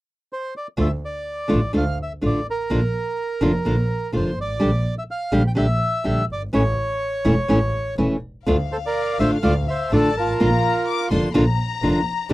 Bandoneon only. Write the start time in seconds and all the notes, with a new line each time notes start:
0.33 C5
0.57 D5
0.81 E5
1.05 D5
1.77 F5
2.03 E5
2.26 D5
2.50 A#4
4.16 C5
4.41 D5
4.98 E5
5.11 F5
5.47 G5
5.58 E5
6.32 D5
6.54 C#5
8.72 A4 C5
8.86 A#4 D5
9.19 C5 E5
9.43 D5 F5
9.68 C5 E5
9.93 A4 D5
10.17 F4 A#4